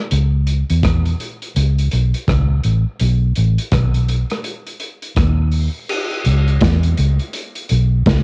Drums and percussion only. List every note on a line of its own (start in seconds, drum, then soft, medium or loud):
0.11 closed hi-hat medium
0.47 closed hi-hat medium
0.70 closed hi-hat medium
0.83 kick loud
0.83 cross-stick loud
0.83 closed hi-hat medium
1.05 closed hi-hat soft
1.20 closed hi-hat medium
1.42 closed hi-hat medium
1.56 closed hi-hat medium
1.78 closed hi-hat medium
1.91 closed hi-hat medium
2.14 closed hi-hat soft
2.28 kick loud
2.28 cross-stick loud
2.28 closed hi-hat medium
2.64 closed hi-hat medium
3.00 closed hi-hat medium
3.36 closed hi-hat medium
3.58 closed hi-hat medium
3.72 kick loud
3.72 cross-stick loud
3.72 closed hi-hat loud
3.94 closed hi-hat medium
4.09 closed hi-hat medium
4.30 cross-stick medium
4.30 closed hi-hat medium
4.44 closed hi-hat medium
4.67 closed hi-hat medium
4.80 closed hi-hat medium
5.02 closed hi-hat soft
5.16 kick loud
5.16 cross-stick loud
5.16 closed hi-hat medium
5.52 open hi-hat soft
5.89 crash loud
6.11 closed hi-hat medium
6.25 closed hi-hat medium
6.48 closed hi-hat soft
6.61 kick loud
6.61 snare loud
6.61 closed hi-hat loud
6.83 closed hi-hat medium
6.97 closed hi-hat medium
7.19 closed hi-hat soft
7.33 closed hi-hat medium
7.55 closed hi-hat medium
7.69 closed hi-hat medium
8.06 kick loud
8.06 snare loud
8.06 closed hi-hat medium